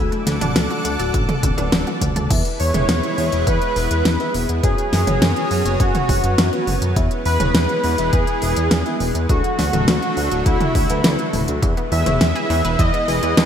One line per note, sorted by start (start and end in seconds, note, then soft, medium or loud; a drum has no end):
0.00 0.11 D3 medium
0.00 0.38 F#3 medium
0.00 0.38 A3 medium
0.00 0.38 D4 medium
0.00 0.38 F#4 medium
0.00 0.38 A4 medium
0.00 2.28 A4 medium
0.00 2.28 D5 medium
0.00 2.28 F#5 medium
0.00 2.28 D6 medium
0.12 0.22 A3 medium
0.12 closed hi-hat soft
0.27 0.39 D2 medium
0.27 0.37 D3 medium
0.27 snare medium
0.27 closed hi-hat medium
0.41 0.53 D1 medium
0.41 0.96 F#3 medium
0.41 0.96 A3 medium
0.41 0.52 D4 loud
0.41 0.96 D4 medium
0.41 0.96 F#4 medium
0.41 0.96 A4 loud
0.41 closed hi-hat medium
0.41 mid tom medium
0.56 0.68 D2 loud
0.56 0.66 D3 medium
0.56 snare loud
0.56 closed hi-hat medium
0.70 0.84 F#4 medium
0.70 closed hi-hat soft
0.85 0.97 D2 medium
0.85 0.95 D3 medium
0.85 closed hi-hat medium
0.99 1.12 D1 medium
0.99 1.11 F#3 medium
0.99 1.11 A3 medium
0.99 1.11 D4 medium
0.99 1.11 F#4 medium
0.99 1.06 A4 medium
0.99 1.11 A4 loud
0.99 closed hi-hat soft
1.14 1.26 A1 loud
1.14 1.28 D3 medium
1.14 kick loud
1.14 closed hi-hat medium
1.29 1.39 A3 medium
1.29 closed hi-hat soft
1.29 mid tom medium
1.43 1.55 D1 medium
1.43 1.54 D3 medium
1.43 kick medium
1.43 closed hi-hat medium
1.43 high tom medium
1.58 1.70 D1 medium
1.58 1.70 F#3 medium
1.58 1.70 A3 medium
1.58 1.68 D4 loud
1.58 1.70 D4 medium
1.58 1.70 F#4 medium
1.58 1.70 B4 loud
1.58 closed hi-hat medium
1.58 high tom medium
1.72 1.84 D1 loud
1.72 1.83 D3 medium
1.72 1.91 F#3 medium
1.72 1.91 A3 medium
1.72 1.91 D4 medium
1.72 1.91 F#4 medium
1.72 1.91 B4 medium
1.72 snare loud
1.72 closed hi-hat medium
1.72 mid tom medium
1.87 2.01 F#4 medium
1.87 closed hi-hat soft
1.87 mid tom medium
2.01 2.13 D2 medium
2.01 2.12 D3 medium
2.01 kick medium
2.01 closed hi-hat medium
2.01 mid tom medium
2.16 2.28 D2 medium
2.16 2.22 A4 medium
2.16 closed hi-hat medium
2.16 mid tom medium
2.30 2.43 E2 loud
2.30 4.61 G#3 medium
2.30 4.61 B3 medium
2.30 2.71 B3 medium
2.30 2.71 E4 medium
2.30 4.61 E4 medium
2.30 2.71 G#4 medium
2.30 2.71 B4 medium
2.30 2.71 E5 medium
2.30 kick loud
2.30 closed hi-hat medium
2.30 crash loud
2.45 closed hi-hat soft
2.60 2.72 E2 loud
2.60 3.50 C#5 loud
2.60 open hi-hat medium
2.74 2.86 E1 medium
2.74 3.29 B3 medium
2.74 3.29 E4 medium
2.74 3.29 G#4 medium
2.74 3.29 B4 medium
2.74 3.29 C#5 loud
2.74 closed hi-hat medium
2.74 mid tom medium
2.89 3.01 E2 loud
2.89 snare loud
2.89 closed hi-hat medium
3.03 closed hi-hat soft
3.18 3.30 E2 medium
3.18 open hi-hat medium
3.32 3.45 E1 medium
3.32 3.44 B3 medium
3.32 3.44 E4 medium
3.32 3.44 G#4 medium
3.32 3.44 B4 medium
3.32 3.44 E5 loud
3.32 closed hi-hat soft
3.47 3.59 E2 loud
3.47 4.30 B4 loud
3.47 kick loud
3.47 closed hi-hat medium
3.62 closed hi-hat soft
3.76 3.88 E1 medium
3.76 4.16 B3 medium
3.76 4.16 E4 medium
3.76 4.16 G#4 medium
3.76 4.17 B4 medium
3.76 4.16 E5 medium
3.76 open hi-hat medium
3.91 4.03 E2 medium
3.91 closed hi-hat medium
4.05 4.17 E2 loud
4.05 snare loud
4.05 closed hi-hat medium
4.20 4.60 B3 loud
4.20 4.60 E4 medium
4.20 4.60 G#4 medium
4.20 4.60 B4 medium
4.20 4.60 E5 loud
4.20 closed hi-hat soft
4.34 4.47 E1 medium
4.34 open hi-hat medium
4.49 4.61 E2 medium
4.49 closed hi-hat medium
4.63 4.76 F#2 medium
4.63 6.94 F#3 medium
4.63 9.26 B3 medium
4.63 5.04 B3 medium
4.63 6.94 C#4 loud
4.63 5.04 C#4 medium
4.63 5.04 F#4 medium
4.63 5.84 G#4 loud
4.63 5.04 B4 medium
4.63 5.04 C#5 medium
4.63 kick loud
4.63 closed hi-hat medium
4.78 closed hi-hat soft
4.93 5.05 F#2 medium
4.93 snare medium
4.93 open hi-hat medium
5.07 5.19 F#1 medium
5.07 5.62 B3 medium
5.07 5.62 C#4 medium
5.07 5.62 F#4 medium
5.07 5.62 B4 medium
5.07 5.62 C#5 loud
5.07 closed hi-hat medium
5.07 mid tom medium
5.22 5.34 F#2 loud
5.22 snare loud
5.22 closed hi-hat medium
5.36 closed hi-hat soft
5.51 5.63 F#2 medium
5.51 open hi-hat medium
5.65 5.78 F#1 medium
5.65 5.77 B3 medium
5.65 5.77 C#4 medium
5.65 5.77 F#4 medium
5.65 5.77 B4 medium
5.65 5.77 C#5 loud
5.65 closed hi-hat medium
5.80 5.92 F#2 loud
5.80 6.63 F#4 loud
5.80 kick loud
5.80 closed hi-hat medium
5.95 closed hi-hat soft
5.95 mid tom medium
6.09 6.21 F#1 medium
6.09 6.49 B3 medium
6.09 6.49 C#4 medium
6.09 6.49 F#4 medium
6.09 6.49 B4 medium
6.09 6.49 C#5 medium
6.09 kick loud
6.09 open hi-hat medium
6.24 6.36 F#2 medium
6.24 closed hi-hat medium
6.38 6.50 F#2 loud
6.38 snare loud
6.38 closed hi-hat medium
6.53 6.93 B3 medium
6.53 6.93 C#4 medium
6.53 6.93 F#4 medium
6.53 6.93 B4 medium
6.53 6.93 C#5 loud
6.53 closed hi-hat soft
6.67 6.79 F#1 medium
6.67 mid tom medium
6.67 open hi-hat medium
6.82 6.94 F#2 medium
6.82 closed hi-hat medium
6.96 7.09 E2 loud
6.96 9.27 E3 medium
6.96 9.27 G#3 medium
6.96 7.37 B3 medium
6.96 7.37 E4 medium
6.96 7.37 G#4 medium
6.96 7.37 B4 medium
6.96 7.37 E5 medium
6.96 kick loud
6.96 closed hi-hat medium
7.11 closed hi-hat soft
7.25 7.38 E2 loud
7.25 8.16 B4 loud
7.25 open hi-hat medium
7.40 7.52 E1 medium
7.40 7.95 B3 medium
7.40 7.95 E4 medium
7.40 7.95 G#4 medium
7.40 7.95 B4 medium
7.40 7.95 C#5 loud
7.40 closed hi-hat medium
7.40 mid tom medium
7.55 7.67 E2 loud
7.55 snare loud
7.55 closed hi-hat medium
7.69 closed hi-hat soft
7.84 7.96 E2 medium
7.84 open hi-hat medium
7.98 8.11 E1 medium
7.98 8.10 B3 medium
7.98 8.10 E4 medium
7.98 8.10 G#4 medium
7.98 8.10 B4 medium
7.98 8.10 E5 loud
7.98 closed hi-hat medium
8.13 8.25 E2 loud
8.13 8.97 G#4 loud
8.13 kick loud
8.13 closed hi-hat medium
8.27 closed hi-hat soft
8.42 8.54 E1 medium
8.42 8.82 B3 medium
8.42 8.82 E4 medium
8.42 8.82 G#4 medium
8.42 8.82 B4 medium
8.42 8.82 E5 medium
8.42 open hi-hat medium
8.56 8.69 E2 medium
8.56 closed hi-hat medium
8.71 8.83 E2 loud
8.71 snare loud
8.71 closed hi-hat medium
8.86 9.26 B3 medium
8.86 9.26 E4 medium
8.86 9.26 G#4 medium
8.86 9.26 B4 medium
8.86 9.26 E5 loud
8.86 closed hi-hat soft
9.00 9.13 E1 medium
9.00 open hi-hat medium
9.15 9.27 E2 medium
9.15 closed hi-hat medium
9.29 9.42 D2 loud
9.29 11.60 D3 medium
9.29 9.70 F#3 medium
9.29 11.60 F#3 medium
9.29 9.70 A3 medium
9.29 11.60 A3 medium
9.29 9.70 D4 medium
9.29 10.50 F#4 loud
9.29 9.70 F#4 medium
9.29 9.70 A4 medium
9.29 kick loud
9.29 closed hi-hat medium
9.44 closed hi-hat soft
9.59 9.71 D2 medium
9.59 snare medium
9.59 open hi-hat medium
9.73 9.86 D1 medium
9.73 10.28 F#3 medium
9.73 10.28 A3 medium
9.73 10.28 D4 medium
9.73 10.28 F#4 medium
9.73 10.28 A4 loud
9.73 closed hi-hat medium
9.73 mid tom medium
9.88 10.00 D2 loud
9.88 snare loud
9.88 closed hi-hat medium
10.02 closed hi-hat soft
10.17 10.29 D2 medium
10.17 open hi-hat medium
10.31 10.44 D1 medium
10.31 10.43 F#3 medium
10.31 10.43 A3 medium
10.31 10.43 D4 medium
10.31 10.43 F#4 medium
10.31 10.43 A4 loud
10.31 closed hi-hat medium
10.46 10.58 D2 loud
10.46 11.30 E4 loud
10.46 kick loud
10.46 closed hi-hat medium
10.61 closed hi-hat soft
10.61 mid tom medium
10.75 10.87 D2 medium
10.75 kick loud
10.75 open hi-hat medium
10.90 11.02 D2 medium
10.90 11.02 F#3 loud
10.90 11.02 A3 medium
10.90 11.02 D4 medium
10.90 11.02 F#4 medium
10.90 11.02 B4 loud
10.90 closed hi-hat medium
11.04 11.17 D2 loud
11.04 11.23 F#3 medium
11.04 11.23 A3 medium
11.04 11.23 D4 medium
11.04 11.23 F#4 medium
11.04 11.23 B4 medium
11.04 snare loud
11.04 closed hi-hat medium
11.19 closed hi-hat soft
11.33 11.46 D1 medium
11.33 mid tom medium
11.33 open hi-hat medium
11.48 11.60 D2 medium
11.48 closed hi-hat medium
11.62 11.75 E2 medium
11.62 11.73 E3 medium
11.62 13.45 E3 medium
11.62 13.45 G#3 medium
11.62 12.03 B3 medium
11.62 13.45 B3 loud
11.62 12.03 E4 medium
11.62 12.03 G#4 medium
11.62 12.03 B4 medium
11.62 12.03 E5 medium
11.62 kick loud
11.62 closed hi-hat soft
11.77 11.91 B3 medium
11.77 closed hi-hat soft
11.92 12.04 E2 loud
11.92 12.02 E3 medium
11.92 12.82 E5 loud
11.92 open hi-hat medium
12.06 12.18 E1 medium
12.06 12.61 B3 medium
12.06 12.13 E4 medium
12.06 12.61 E4 medium
12.06 12.61 G#4 medium
12.06 12.61 B4 medium
12.06 12.61 C#5 loud
12.06 closed hi-hat soft
12.06 mid tom medium
12.21 12.33 E2 loud
12.21 12.31 E3 medium
12.21 snare loud
12.21 closed hi-hat medium
12.35 12.49 G#4 loud
12.35 closed hi-hat soft
12.50 12.62 E2 medium
12.50 12.60 E3 loud
12.50 open hi-hat medium
12.64 12.77 E1 medium
12.64 12.76 B3 medium
12.64 12.76 E4 medium
12.64 12.76 G#4 medium
12.64 12.71 B4 loud
12.64 12.76 B4 medium
12.64 12.76 E5 loud
12.64 closed hi-hat soft
12.79 12.91 E2 loud
12.79 12.90 E3 medium
12.79 13.45 D#5 loud
12.79 kick loud
12.79 closed hi-hat medium
12.93 13.07 B3 medium
12.93 closed hi-hat soft
13.08 13.20 E1 medium
13.08 13.19 E3 medium
13.08 13.45 B3 medium
13.08 13.45 E4 medium
13.08 13.45 G#4 medium
13.08 13.45 B4 medium
13.08 13.45 G#5 medium
13.08 open hi-hat medium
13.23 13.35 E2 medium
13.23 13.29 E4 medium
13.23 closed hi-hat soft
13.37 13.45 E2 loud
13.37 13.45 E3 medium
13.37 snare loud
13.37 closed hi-hat soft